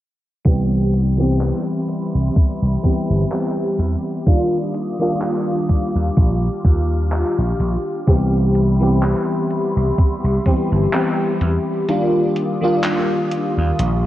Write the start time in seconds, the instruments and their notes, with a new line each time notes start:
0.45 slap bass C2, fm electric piano E3 G3 B3 C4 G4, ambient pad G4 E5 B5 C6, kick, closed hi-hat
0.94 closed hi-hat
1.17 fm electric piano E3 G3 B3 C4 G4
1.41 clap, closed hi-hat
1.89 closed hi-hat
2.15 slap bass C2
2.36 muted slap bass stroke, kick, closed hi-hat
2.62 slap bass C2
2.83 fm electric piano E3 G3 B3 C4 G4, kick, closed hi-hat
3.10 slap bass G1
3.31 fm electric piano E3 G3 B3 C4 G4, clap, closed hi-hat
3.79 slap bass E2, closed hi-hat
4.26 fm electric piano D#3 G3 A#3 D4 F4, ambient pad F5 D6 D#6, kick, closed hi-hat
4.74 closed hi-hat
4.99 fm electric piano D#3 G3 A#3 D4 F4
5.22 clap, closed hi-hat
5.69 kick, closed hi-hat
5.95 slap bass D#2
6.17 slap bass A#1, ambient pad F6, kick, closed hi-hat
6.65 slap bass D#2, kick, closed hi-hat
7.12 clap, closed hi-hat
7.38 slap bass A#1
7.60 slap bass A#1, closed hi-hat
8.07 slap bass C2, fm electric piano E3 G3 B3 C4 G4, ambient pad E5 B5 C6, kick, closed hi-hat
8.55 closed hi-hat
8.80 fm electric piano E3 G3 B3 C4 G4
9.03 clap, closed hi-hat
9.51 closed hi-hat
9.76 slap bass C2
9.98 muted slap bass stroke, kick, closed hi-hat
10.24 slap bass C2
10.45 fm electric piano E3 G3 B3 C4 G4, kick, closed hi-hat
10.72 slap bass G1
10.93 fm electric piano E3 G3 B3 C4 G4, clap, closed hi-hat
11.41 slap bass E2, closed hi-hat
11.88 fm electric piano D#3 G3 A#3 D4 F4, ambient pad F5 D6 D#6, closed hi-hat
12.36 closed hi-hat
12.61 fm electric piano D#3 G3 A#3 D4 F4
12.84 clap, closed hi-hat
13.32 closed hi-hat
13.58 slap bass D#2
13.79 slap bass A#1, ambient pad C6, closed hi-hat